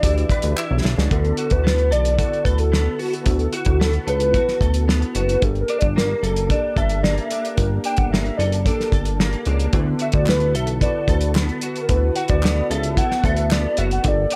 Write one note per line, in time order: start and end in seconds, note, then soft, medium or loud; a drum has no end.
0.00 0.25 D2 medium
0.00 1.11 E3 medium
0.00 0.03 D4 medium
0.00 0.84 D4 medium
0.00 1.04 D4 medium
0.00 0.56 E4 medium
0.00 0.03 F#4 medium
0.00 1.04 F#4 medium
0.00 0.04 G4 medium
0.00 1.05 G4 medium
0.00 0.31 B4 medium
0.00 1.12 B4 medium
0.00 0.84 D5 loud
0.00 kick medium
0.00 closed hi-hat loud
0.05 1.05 D5 medium
0.18 closed hi-hat soft
0.29 0.35 D2 soft
0.29 1.91 B4 medium
0.29 kick medium
0.29 closed hi-hat medium
0.42 0.55 D2 medium
0.42 closed hi-hat medium
0.57 1.17 E4 medium
0.57 clap loud
0.71 0.82 B1 loud
0.84 0.95 B1 medium
0.84 1.63 D4 medium
0.84 snare medium
0.98 1.08 C#2 loud
0.98 snare medium
1.10 1.33 D2 loud
1.10 4.61 D3 medium
1.10 2.12 B3 medium
1.10 2.12 E4 medium
1.10 2.12 F#4 medium
1.10 1.53 A4 loud
1.10 2.13 A4 medium
1.10 kick medium
1.10 closed hi-hat medium
1.25 closed hi-hat soft
1.37 2.17 F#4 medium
1.37 closed hi-hat medium
1.50 1.93 D2 medium
1.50 1.92 B4 loud
1.50 kick medium
1.50 closed hi-hat medium
1.64 2.71 B3 medium
1.64 snare loud
1.78 closed hi-hat soft
1.91 2.24 B1 medium
1.91 2.45 A4 medium
1.91 2.17 D5 loud
1.91 closed hi-hat medium
2.05 closed hi-hat medium
2.17 3.19 B3 medium
2.17 3.19 E4 medium
2.17 2.97 F#4 medium
2.17 3.20 F#4 medium
2.17 3.20 A4 medium
2.17 2.43 D5 loud
2.17 kick medium
2.17 closed hi-hat loud
2.33 closed hi-hat soft
2.44 2.88 D2 medium
2.44 4.06 A4 medium
2.44 2.61 B4 loud
2.44 kick medium
2.44 closed hi-hat medium
2.58 3.02 A4 loud
2.58 closed hi-hat medium
2.72 3.79 B3 medium
2.72 snare medium
2.99 3.52 F#4 medium
2.99 3.15 F#4 medium
2.99 open hi-hat soft
3.13 3.56 A4 medium
3.13 closed hi-hat soft
3.24 3.48 D2 loud
3.24 4.26 B3 medium
3.24 4.27 E4 medium
3.24 4.27 F#4 medium
3.24 4.28 A4 medium
3.24 kick medium
3.24 closed hi-hat medium
3.39 closed hi-hat soft
3.53 4.33 F#4 medium
3.53 3.67 F#4 medium
3.53 closed hi-hat medium
3.65 3.99 D2 loud
3.65 kick medium
3.65 closed hi-hat soft
3.69 3.81 F#4 medium
3.80 4.87 B3 medium
3.80 3.93 A4 medium
3.80 snare loud
3.93 closed hi-hat soft
4.07 4.39 C#2 medium
4.07 4.60 A4 medium
4.07 4.85 B4 medium
4.07 closed hi-hat medium
4.20 closed hi-hat medium
4.32 5.34 B3 medium
4.32 5.35 E4 medium
4.32 5.14 F#4 medium
4.32 5.35 F#4 medium
4.32 5.36 A4 medium
4.32 kick medium
4.32 closed hi-hat medium
4.48 snare soft
4.48 closed hi-hat soft
4.61 5.04 D2 loud
4.61 5.99 A4 medium
4.61 kick medium
4.61 closed hi-hat medium
4.74 closed hi-hat medium
4.88 5.47 B3 medium
4.88 snare medium
5.02 closed hi-hat soft
5.15 5.37 F#1 loud
5.15 5.47 F#4 medium
5.15 5.45 B4 medium
5.15 closed hi-hat medium
5.29 closed hi-hat soft
5.40 5.64 G1 loud
5.40 6.42 A#3 medium
5.40 6.43 D4 medium
5.40 6.43 G4 medium
5.40 6.44 A4 medium
5.40 5.60 A4 loud
5.40 kick loud
5.40 closed hi-hat medium
5.55 closed hi-hat soft
5.61 5.77 A#4 medium
5.68 6.50 D4 medium
5.68 closed hi-hat medium
5.79 6.15 G1 loud
5.79 5.87 D5 medium
5.79 kick loud
5.79 closed hi-hat medium
5.96 7.02 A#3 medium
5.96 6.25 A#4 medium
5.96 snare loud
6.23 6.55 F#1 medium
6.23 6.77 A4 medium
6.23 6.50 A4 medium
6.23 closed hi-hat medium
6.36 closed hi-hat medium
6.48 7.50 A#3 medium
6.48 7.50 D4 medium
6.48 7.31 D4 medium
6.48 7.51 G4 medium
6.48 7.51 A4 medium
6.48 6.75 D5 loud
6.48 kick medium
6.48 closed hi-hat medium
6.76 7.20 G1 medium
6.76 8.39 A4 medium
6.76 7.02 E5 loud
6.76 kick medium
6.76 closed hi-hat medium
6.89 closed hi-hat medium
7.03 8.11 A#3 medium
7.03 7.20 D5 loud
7.03 snare loud
7.18 7.46 E5 medium
7.18 closed hi-hat soft
7.31 7.85 D4 medium
7.31 closed hi-hat medium
7.45 closed hi-hat soft
7.56 7.79 G1 loud
7.56 8.58 A#3 medium
7.56 8.58 D4 medium
7.56 8.59 G4 medium
7.56 8.59 A#4 medium
7.56 kick medium
7.56 closed hi-hat medium
7.84 8.66 D4 medium
7.84 7.99 G5 loud
7.84 closed hi-hat medium
7.97 8.30 G1 loud
7.97 8.10 F#5 loud
7.97 kick loud
7.97 closed hi-hat medium
8.11 9.19 A#3 medium
8.11 8.39 E5 loud
8.11 snare loud
8.26 closed hi-hat soft
8.37 8.71 F#1 medium
8.37 8.93 A4 medium
8.37 8.67 D5 loud
8.37 closed hi-hat medium
8.52 closed hi-hat soft
8.65 9.66 A#3 medium
8.65 9.67 D4 medium
8.65 9.46 D4 medium
8.65 9.67 G4 medium
8.65 9.19 A4 medium
8.65 9.68 A4 medium
8.65 kick medium
8.65 closed hi-hat medium
8.80 snare soft
8.80 closed hi-hat soft
8.92 9.35 G1 medium
8.92 10.31 A4 medium
8.92 kick medium
8.92 closed hi-hat medium
9.05 closed hi-hat medium
9.20 9.79 A#3 medium
9.20 snare loud
9.33 closed hi-hat soft
9.45 9.68 C#2 loud
9.45 10.00 D4 medium
9.45 closed hi-hat medium
9.60 closed hi-hat soft
9.73 9.95 D2 loud
9.73 13.01 D3 medium
9.73 10.74 B3 medium
9.73 10.75 E4 medium
9.73 10.75 F#4 medium
9.73 10.75 A4 medium
9.73 kick loud
9.73 closed hi-hat medium
9.99 10.80 F#4 medium
9.99 10.13 E5 loud
9.99 closed hi-hat medium
10.12 10.56 D2 loud
10.12 10.27 D5 loud
10.12 kick loud
10.12 closed hi-hat medium
10.26 11.35 B3 medium
10.26 10.53 B4 medium
10.26 snare loud
10.26 clap medium
10.40 closed hi-hat soft
10.55 10.87 B1 loud
10.55 11.09 A4 medium
10.55 10.67 E5 loud
10.55 closed hi-hat medium
10.67 closed hi-hat medium
10.80 11.82 B3 medium
10.80 11.82 E4 medium
10.80 11.82 F#4 medium
10.80 11.62 F#4 medium
10.80 11.83 B4 medium
10.80 11.32 D5 loud
10.80 kick medium
10.80 closed hi-hat loud
11.08 11.51 D2 medium
11.08 12.70 A4 medium
11.08 kick medium
11.08 closed hi-hat medium
11.21 closed hi-hat medium
11.35 12.43 B3 medium
11.35 snare loud
11.35 clap medium
11.49 closed hi-hat soft
11.61 12.16 F#4 medium
11.61 closed hi-hat medium
11.76 closed hi-hat soft
11.82 11.91 A#4 medium
11.88 12.11 D2 loud
11.88 12.90 B3 medium
11.88 12.90 E4 medium
11.88 12.91 F#4 medium
11.88 11.97 A4 medium
11.88 12.15 B4 loud
11.88 kick loud
11.88 closed hi-hat medium
11.97 12.94 B4 medium
12.16 12.97 F#4 medium
12.16 12.22 F#5 medium
12.16 closed hi-hat medium
12.28 12.62 D2 loud
12.28 12.67 D5 medium
12.28 kick loud
12.28 closed hi-hat medium
12.43 13.50 B3 medium
12.43 snare loud
12.43 clap medium
12.70 13.03 C#2 medium
12.70 13.24 A4 medium
12.70 12.99 E5 loud
12.70 closed hi-hat medium
12.83 closed hi-hat medium
12.96 13.98 B3 medium
12.96 13.98 E4 medium
12.96 13.11 E4 medium
12.96 13.98 F#4 medium
12.96 13.98 A4 medium
12.96 13.09 F#5 loud
12.96 kick medium
12.96 closed hi-hat loud
13.10 13.77 F#4 medium
13.10 13.26 F#5 medium
13.10 snare soft
13.24 13.67 D2 medium
13.24 14.36 A4 medium
13.24 13.51 E5 loud
13.24 kick medium
13.24 closed hi-hat medium
13.37 closed hi-hat medium
13.51 14.11 B3 medium
13.51 13.76 D5 loud
13.51 snare medium
13.51 clap medium
13.77 14.00 F#1 medium
13.77 14.10 F#4 medium
13.77 13.84 E5 medium
13.77 closed hi-hat medium
13.91 14.09 F#5 loud
13.91 closed hi-hat medium
14.03 14.26 G1 loud
14.03 14.36 A#3 medium
14.03 14.36 D4 medium
14.03 14.36 G4 medium
14.03 14.36 A4 medium
14.03 kick medium
14.03 closed hi-hat loud
14.08 14.35 D5 loud
14.30 14.36 D4 medium
14.30 closed hi-hat medium